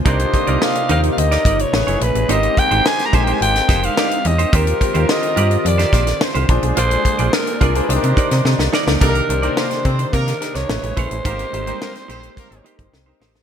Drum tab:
HH |xxxx-xxxxxxx-xxx|xxxx-xxxxxxx-xxx|xxxx-xxxxxxx-xxx|xxxx-xxxxxxx----|
SD |----o----o--o---|----oo---oo-o---|----o----oooo---|----o------ooooo|
BD |o-o-------o-----|--o---o---o-----|o-o-------o---o-|--o---o---o-----|

HH |xxxx-xxxxxxx-xxx|xxxx-xxxxxxx----|
SD |----oo---oooo---|----oo------o-oo|
BD |o-----o-o-----o-|o-------o--o----|